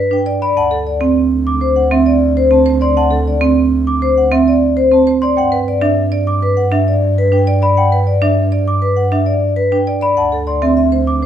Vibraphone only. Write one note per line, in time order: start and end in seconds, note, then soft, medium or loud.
0.00 0.16 B4 medium
0.13 0.32 G5 medium
0.42 0.62 D5 medium
0.57 0.77 F#5 medium
0.87 1.06 D5 medium
1.61 1.81 C5 medium
1.76 1.96 F#5 medium
2.06 2.26 D5 medium
2.37 2.56 C5 medium
2.52 2.71 A5 medium
2.81 3.01 D5 medium
2.97 3.16 F#5 medium
3.28 3.47 D5 medium
4.02 4.22 C5 medium
4.17 4.37 F#5 medium
4.48 4.67 D5 medium
4.77 4.96 C5 medium
4.93 5.12 A5 medium
5.23 5.42 D5 medium
5.38 5.57 F#5 medium
5.68 5.87 D5 medium
6.42 6.62 B4 medium
6.57 6.77 F#5 medium
6.88 7.07 D5 medium
7.18 7.37 B4 medium
7.33 7.52 G5 medium
7.62 7.82 D5 medium
7.77 7.97 F#5 medium
8.07 8.27 D5 medium
8.82 9.02 B4 medium
8.97 9.16 F#5 medium
9.26 9.46 D5 medium
9.56 9.76 B4 medium
9.72 9.91 G5 medium
10.01 10.21 D5 medium
10.17 10.37 F#5 medium
10.47 10.66 D5 medium
10.77 10.97 E5 medium
11.23 11.26 C5 medium